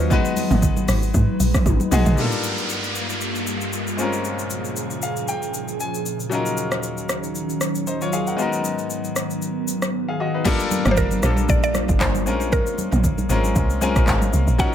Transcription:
Already playing: grand piano F#3 C#4 D#4 F4 A#4 C5, ambient pad F#3, synth pluck B4
0.10 grand piano G#3 B3 D#4 F#4 B4, ambient pad G#3 D#4 B4, kick, low conga, shaker
0.25 shaker
0.37 open hi-hat, high conga, shaker
0.51 log drum bass G#1, mid tom, high conga, shaker
0.62 kick, shaker
0.77 high conga, shaker
0.88 log drum bass G#1, cross-stick, open hi-hat, high conga, shaker
1.02 high conga, shaker
1.14 log drum bass G#2, kick, shaker
1.40 log drum bass A#1, open hi-hat, high conga, shaker
1.54 kick, cross-stick, mid tom, shaker
1.66 log drum bass G#1, kick, high tom, low conga, shaker
1.80 high conga, shaker
1.91 log drum bass B1, grand piano G#3 B3 D#4 F#4 G#4, mid tom, open hi-hat, shaker
2.06 log drum bass A#1, floor tom, shaker
2.16 ambient pad G2 G3 A#3 F4, grand piano G3 A3 D4 F4, downlifter, shaker
2.21 grand piano A#3 A4
2.32 shaker
2.44 shaker
2.58 shaker
2.69 shaker
2.84 shaker
2.95 shaker
3.09 shaker
3.21 shaker
3.35 shaker
3.47 shaker
3.61 shaker
3.73 shaker
3.87 shaker
3.97 ambient pad A#2 C#3 F3 G#4, grand piano G#3 C4 C#4 F4, shaker
4.02 grand piano A#4
4.13 shaker
4.25 shaker
4.39 shaker
4.50 shaker
4.65 shaker
4.76 shaker
4.90 shaker
5.02 grand piano F5, shaker
5.16 shaker
5.28 grand piano G5, shaker
5.42 shaker
5.54 shaker
5.68 shaker
5.80 grand piano G#5, shaker
5.94 shaker
6.06 shaker
6.20 shaker
6.30 ambient pad D#2 D#3 F#3 C#4, grand piano F#3 C#4 D#4 F4, shaker
6.35 grand piano A#4
6.46 shaker
6.57 shaker
6.72 cross-stick, shaker
6.83 shaker
6.97 shaker
7.09 cross-stick, shaker
7.24 shaker
7.35 shaker
7.50 shaker
7.61 cross-stick, shaker
7.75 shaker
7.87 grand piano D#4 C5, shaker
8.01 grand piano F4 C#5, shaker
8.13 grand piano G#4 F5, shaker
8.27 grand piano A#4 F#5, shaker
8.36 ambient pad G#2 D#3 B3, grand piano G#3 B3 D#4 F#4, shaker
8.41 grand piano A#4
8.53 shaker
8.64 shaker
8.79 shaker
8.90 shaker
9.04 shaker
9.16 cross-stick, shaker
9.30 shaker
9.42 shaker
9.68 shaker
9.82 cross-stick, shaker
10.08 grand piano G#4 F5
10.20 grand piano F#4 D#5
10.34 grand piano D#4 B4
10.44 grand piano G3 A#3 D4 F4 A4, ambient pad G3 A#3 D4 F4, kick, crash, low conga, shaker
10.60 shaker
10.71 high conga, shaker
10.85 log drum bass G1, grand piano G3 A#3 D4 F4 A#4, cross-stick, mid tom, high conga, shaker
10.91 synth pluck C5
10.97 synth pluck A#4, kick, shaker
11.11 high conga, shaker
11.22 log drum bass A#1, grand piano G3 A#3 D4 F4 A4, cross-stick, high conga, shaker
11.37 high conga, shaker
11.49 log drum bass A#1, synth pluck D5, kick, shaker
11.63 synth pluck D5, shaker
11.75 cross-stick, high conga, shaker
11.89 log drum bass G1, kick, shaker
12.00 log drum bass G1, synth pluck C5, kick, clap, low conga, shaker
12.15 high conga, shaker
12.26 log drum bass A#1, grand piano G#3 C4 C#4 F4 A#4, ambient pad G#3 A#3, shaker
12.41 shaker
12.52 synth pluck A#4, kick, low conga, shaker
12.67 shaker
12.78 high conga, shaker
12.92 log drum bass A#1, mid tom, high conga, shaker
13.04 kick, shaker
13.18 high conga, shaker
13.29 log drum bass G#1, grand piano G#3 C4 C#4 F4 A#4, high conga, shaker
13.44 high conga, shaker
13.56 log drum bass C2, kick, shaker
13.70 shaker
13.81 grand piano G#3 C4 C#4 F4 A#4 G#5, high conga, shaker
13.96 log drum bass A#1, kick, cross-stick, shaker
14.07 log drum bass G#1, grand piano F5, kick, clap, low conga, shaker
14.21 high conga, shaker
14.33 log drum bass C2, shaker
14.47 log drum bass A#1, shaker
14.58 ambient pad D#3 D#4, grand piano F3 F#3 C#4 D#4 A#4, synth pluck F#5, kick, low conga, shaker

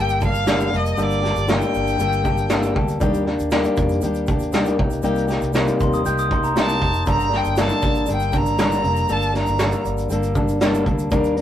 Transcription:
Already playing: fingered electric bass G1, steel-string acoustic guitar D3 G3 A#3
0.00 steel-string acoustic guitar G4 A4, violin G5
0.09 shaker
0.21 steel-string acoustic guitar G3 A#3 G4 A4, violin F5, kick, shaker
0.34 shaker
0.46 steel-string acoustic guitar G2 D3 G3 A#3 G4 A4, snare, shaker
0.60 shaker
0.71 fingered electric bass F1, steel-string acoustic guitar G3 A#3 G4 A4, shaker
0.76 violin D#5
0.86 shaker
0.97 fingered electric bass G1, steel-string acoustic guitar G2 D3 G3 A#3 G4 A4, shaker
1.02 violin D5
1.11 shaker
1.12 shaker
1.22 steel-string acoustic guitar G3 A#3 G4 A4, snare, shaker
1.36 fingered electric bass G1, shaker
1.47 steel-string acoustic guitar G2 D3 G3 A#3 G4 A4, snare, shaker
1.52 violin G5
1.61 shaker
1.74 fingered electric bass G1, shaker
1.87 shaker
1.99 fingered electric bass G1, steel-string acoustic guitar G3 A#3 G4 A4, shaker
2.12 shaker
2.24 steel-string acoustic guitar G3 A#3 G4 A4, kick, shaker
2.37 shaker
2.50 steel-string acoustic guitar G2 D3 G3 A#3 G4 A4, snare, shaker
2.63 shaker
2.75 fingered electric bass D2, steel-string acoustic guitar G3 A#3 G4 A4, kick
2.88 shaker
3.00 fingered electric bass D#2, steel-string acoustic guitar D#3 G3 A#3 D4 G4, kick, shaker
3.14 shaker
3.26 steel-string acoustic guitar A#3 D4 G4, snare
3.39 fingered electric bass D#2, shaker
3.51 steel-string acoustic guitar D#3 G3 A#3 D4 G4, snare, shaker
3.64 shaker
3.77 fingered electric bass F2, kick, shaker
3.78 shaker
3.89 shaker
3.91 shaker
4.01 fingered electric bass D#2, steel-string acoustic guitar G3 A#3, shaker
4.04 steel-string acoustic guitar D4 G4, shaker
4.14 shaker
4.16 shaker
4.27 steel-string acoustic guitar G4, kick, shaker
4.29 steel-string acoustic guitar A#3 D4, shaker
4.39 shaker
4.42 shaker
4.52 steel-string acoustic guitar D#3 G3 A#3 D4 G4, snare, shaker
4.65 shaker
4.68 shaker
4.79 fingered electric bass C2, steel-string acoustic guitar A#3 D#4 G4, kick
4.90 shaker
4.93 shaker
5.02 fingered electric bass C2, steel-string acoustic guitar C3 G3 A#3 D#4 G4, shaker
5.05 shaker
5.15 shaker
5.18 shaker
5.28 steel-string acoustic guitar A#3 D#4 G4, snare, shaker
5.31 shaker
5.41 fingered electric bass C2, shaker
5.43 shaker
5.53 steel-string acoustic guitar C3 G3 A#3 D#4 G4, snare, shaker
5.55 shaker
5.67 shaker
5.80 fingered electric bass D#2, glockenspiel C6, kick, shaker
5.82 shaker
5.93 glockenspiel D#6, shaker
6.04 fingered electric bass C2, steel-string acoustic guitar G3 A#3 D#4 G4, glockenspiel G6, shaker
6.18 glockenspiel D#6, shaker
6.30 steel-string acoustic guitar A#3 D#4 G4, glockenspiel C6, kick, shaker
6.44 glockenspiel A#5, shaker
6.55 steel-string acoustic guitar C3 G3 A#3 D#4 G4, snare, shaker
6.60 violin A5
6.69 shaker
6.80 fingered electric bass F1, steel-string acoustic guitar A#3 D#4 G4, kick
6.94 shaker
6.95 shaker
7.06 fingered electric bass G1, steel-string acoustic guitar G2 D3 G3 A#3 D4 A4, kick, shaker
7.08 violin A#5, shaker
7.19 shaker
7.21 shaker
7.31 steel-string acoustic guitar G3 A#3 D4 A4, snare
7.36 violin G5
7.44 fingered electric bass G1, shaker
7.56 steel-string acoustic guitar G2 D3 G3 A#3 D4 A4, snare, shaker
7.61 violin A5
7.69 shaker
7.82 fingered electric bass A1, kick, shaker
7.84 shaker
7.95 shaker
7.97 shaker
8.06 fingered electric bass G1, steel-string acoustic guitar G3 A#3 D4 A4, shaker
8.09 violin G5, shaker
8.20 shaker
8.22 shaker
8.32 steel-string acoustic guitar G3 A#3 D4 A4, violin A#5, kick, shaker
8.46 shaker
8.58 steel-string acoustic guitar G2 D3 G3 A#3 D4 A4, snare, shaker
8.72 shaker
8.84 fingered electric bass F1, steel-string acoustic guitar G3 A#3 D4 A4, shaker
8.96 shaker
9.08 fingered electric bass G1, steel-string acoustic guitar G2 D3 G3 A#3 D4 A4, violin A5, shaker
9.22 shaker
9.34 steel-string acoustic guitar G3 A#3 D4 A4, violin A#5, snare, shaker
9.46 fingered electric bass G1, shaker
9.59 steel-string acoustic guitar G2 D3 G3 A#3 D4 A4, snare, shaker
9.72 shaker
9.84 fingered electric bass G1, shaker
9.98 shaker
10.10 fingered electric bass G1, steel-string acoustic guitar G3, shaker
10.12 steel-string acoustic guitar A#3 D4 A4, shaker
10.23 shaker
10.35 steel-string acoustic guitar G3 A#3 D4 A4, kick, shaker
10.48 shaker
10.61 steel-string acoustic guitar G2 D3 G3 A#3 D4 A4, snare, shaker
10.74 shaker
10.86 fingered electric bass D2, steel-string acoustic guitar G3 A#3 D4 A4, kick, shaker
10.98 shaker
11.11 fingered electric bass D#2, steel-string acoustic guitar D#3 G3 A#3 D4, kick, shaker
11.12 steel-string acoustic guitar A#4, shaker
11.24 shaker
11.37 steel-string acoustic guitar D4 A#4, shaker

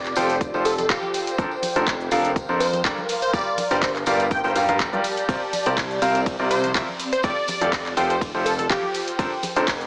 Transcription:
Already playing: analog synth bass F1, ambient pad F4 C5, digital synth lead D5
0.05 ambient pad G5, clap, tambourine, shaker
0.16 analog synth bass F1, grand piano F3 F4 G4 A4 G5, digital synth lead C5, open hi-hat, tambourine, shaker
0.29 digital synth lead C5, closed hi-hat, tambourine, shaker
0.41 kick, closed hi-hat, tambourine, shaker
0.54 analog synth bass F1, grand piano F3 F4 G4 A4 C5, tambourine
0.65 digital synth lead A4, open hi-hat, tambourine, shaker
0.78 digital synth lead A4, closed hi-hat, tambourine, high conga, shaker
0.89 analog synth bass F1, grand piano F3 F4 G4 A4 F5, digital synth lead G4, kick, clap, closed hi-hat, tambourine, shaker
1.02 tambourine, high conga
1.14 ambient pad A#4, open hi-hat, tambourine, shaker
1.27 closed hi-hat, tambourine, shaker
1.38 analog synth bass F1, grand piano F3 D4 A4 A#4 C5, kick, closed hi-hat, tambourine, shaker
1.51 ambient pad F5, tambourine
1.62 open hi-hat, tambourine, high conga, shaker
1.76 analog synth bass F1, grand piano F3 D4 A4 A#4 C5, closed hi-hat, tambourine, shaker
1.87 kick, clap, closed hi-hat, tambourine, shaker
1.93 ambient pad C6
2.00 tambourine, shaker
2.11 analog synth bass F1, grand piano F3 D4 A4 A#4 F5, open hi-hat, tambourine, shaker
2.25 closed hi-hat, tambourine, shaker
2.36 kick, closed hi-hat, tambourine, shaker
2.49 analog synth bass F2, grand piano F3 D4 A4 A#4 C5, tambourine
2.60 digital synth lead C5, open hi-hat, tambourine, shaker
2.73 closed hi-hat, tambourine, high conga, shaker
2.85 analog synth bass F1, grand piano G3 D4 A4 A#4 D5, kick, clap, closed hi-hat, tambourine, shaker
2.98 tambourine, high conga
3.09 ambient pad G4, open hi-hat, tambourine, shaker
3.22 digital synth lead C5, closed hi-hat, tambourine, shaker
3.33 analog synth bass G1, grand piano G3 F4 G4 A#4 D5, digital synth lead D5, kick, closed hi-hat, tambourine, shaker
3.47 tambourine
3.58 open hi-hat, tambourine, high conga, shaker
3.71 analog synth bass G1, grand piano G3 F4 G4 A#4 D5, digital synth lead C5, closed hi-hat, tambourine, shaker
3.76 ambient pad D5
3.82 digital synth lead C5, kick, clap, open hi-hat, tambourine, shaker
3.95 clap, tambourine, shaker
4.06 analog synth bass G1, grand piano G3 F4 G4 A#4 F5, digital synth lead D5, ambient pad A5, open hi-hat, tambourine, shaker
4.20 closed hi-hat, tambourine, shaker
4.31 digital synth lead G5, kick, closed hi-hat, tambourine, shaker
4.44 analog synth bass G1, grand piano G3 F4 G4 A#4 C5, digital synth lead G5, tambourine
4.55 analog synth bass G1, grand piano G3 F4 G4 A#4 F5, open hi-hat, tambourine, shaker
4.68 analog synth bass G1, grand piano G3 F4 G4 A#4 F5, closed hi-hat, tambourine, high conga, shaker
4.80 kick, clap, closed hi-hat, tambourine, shaker
4.93 analog synth bass G2, grand piano G3 F4 G4 A#4 D5, tambourine, high conga, shaker
5.04 open hi-hat, tambourine, shaker
5.17 closed hi-hat, tambourine, shaker
5.29 analog synth bass C2, ambient pad C4, grand piano C4 F4 A#4 C5 D5, kick, closed hi-hat, ride, tambourine, shaker
5.42 tambourine
5.53 open hi-hat, tambourine, high conga, shaker
5.66 analog synth bass C2, grand piano C4 F4 A#4 C5 D5, closed hi-hat, tambourine, shaker
5.78 kick, clap, closed hi-hat, ride, tambourine, shaker
5.91 tambourine, shaker
6.02 analog synth bass C2, grand piano C4 F4 A#4 C5 F5, open hi-hat, tambourine, shaker
6.15 closed hi-hat, tambourine, shaker
6.26 kick, closed hi-hat, ride, tambourine, shaker
6.39 analog synth bass C2, grand piano C4 F4 A#4 C5 D5, tambourine
6.51 digital synth lead C5, open hi-hat, tambourine, shaker
6.64 closed hi-hat, tambourine, high conga, shaker
6.75 analog synth bass C2, grand piano F3 F4 A#4 C5 E5, kick, clap, closed hi-hat, ride, tambourine, shaker
6.88 tambourine, high conga
7.00 ambient pad F4, open hi-hat, tambourine, shaker
7.12 digital synth lead C5, closed hi-hat, tambourine, shaker
7.23 analog synth bass F1, grand piano F3 F4 G4 A4 D5, digital synth lead D5, kick, closed hi-hat, ride, tambourine, shaker
7.36 tambourine
7.48 open hi-hat, tambourine, high conga, shaker
7.56 ambient pad C5
7.61 analog synth bass F1, grand piano F3 F4 G4 A4 D5, ambient pad G5, closed hi-hat, tambourine, shaker
7.73 kick, clap, open hi-hat, ride, tambourine, shaker
7.85 clap, tambourine, shaker
7.97 analog synth bass F1, grand piano F3 F4 G4 A4 G5, digital synth lead C5, open hi-hat, tambourine, shaker
8.10 digital synth lead C5, closed hi-hat, tambourine, shaker
8.21 kick, closed hi-hat, ride, tambourine, shaker
8.34 analog synth bass F1, grand piano F3 F4 G4 A4 C5, tambourine
8.46 digital synth lead A4, open hi-hat, tambourine, shaker
8.58 digital synth lead A4, closed hi-hat, tambourine, high conga, shaker
8.70 analog synth bass F1, grand piano F3 F4 G4 A4 F5, digital synth lead G4, kick, clap, closed hi-hat, ride, tambourine, shaker
8.82 tambourine, high conga
8.94 ambient pad A#4, open hi-hat, tambourine, shaker
9.07 closed hi-hat, tambourine, shaker
9.19 analog synth bass F1, grand piano F3 D4 A4 A#4 C5, kick, closed hi-hat, ride, tambourine, shaker
9.32 ambient pad F5, tambourine
9.43 open hi-hat, tambourine, high conga, shaker
9.56 analog synth bass F1, grand piano F3 D4 A4 A#4 C5, closed hi-hat, tambourine, shaker
9.68 kick, clap, closed hi-hat, ride, tambourine, shaker
9.81 tambourine, shaker

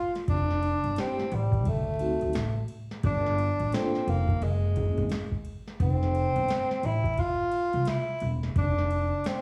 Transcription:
Already playing: tenor saxophone F4
0.15 snare, ride
0.28 upright bass F1, tenor saxophone D4, kick, ride
0.51 snare
0.63 ride
0.84 upright bass G1, ride
0.96 vibraphone A3 C4 E4 G4, tenor saxophone C4, snare, hi-hat pedal, ride
1.20 snare
1.32 upright bass A1, tenor saxophone G3, ride
1.52 kick, ride
1.65 upright bass D2, tenor saxophone A3, kick, ride
1.99 vibraphone A3 C4 D#4 F#4, ride
2.21 upright bass D2, ride
2.33 upright bass A1, snare, hi-hat pedal, ride
2.68 ride
2.91 snare
3.03 upright bass G1, tenor saxophone D4, kick, ride
3.26 snare
3.38 ride
3.60 upright bass A1, ride
3.72 vibraphone A#3 D4 F4 A4, tenor saxophone C4, snare, hi-hat pedal, ride
3.95 snare
4.07 upright bass F1, tenor saxophone A#3, ride
4.28 kick, ride
4.42 upright bass F#1, tenor saxophone G#3, ride
4.75 vibraphone A#3 C#4 E4 G#4, kick, ride
4.98 upright bass G#1, kick, ride
5.09 snare, hi-hat pedal, ride
5.32 kick
5.45 ride
5.68 snare
5.80 upright bass F1, tenor saxophone C4, kick, ride
6.03 snare
6.15 ride
6.36 upright bass G1, ride
6.48 snare, hi-hat pedal, ride
6.71 snare
6.83 upright bass A1, tenor saxophone E4, ride
7.04 kick, ride
7.18 tenor saxophone F4, kick, ride
7.52 ride
7.73 upright bass C2, ride
7.85 tenor saxophone E4, snare, hi-hat pedal, ride
8.20 upright bass E1, ride
8.43 snare
8.56 upright bass F1, tenor saxophone D4, kick, ride
8.78 snare
8.91 ride
9.24 tenor saxophone C4, snare, hi-hat pedal, ride

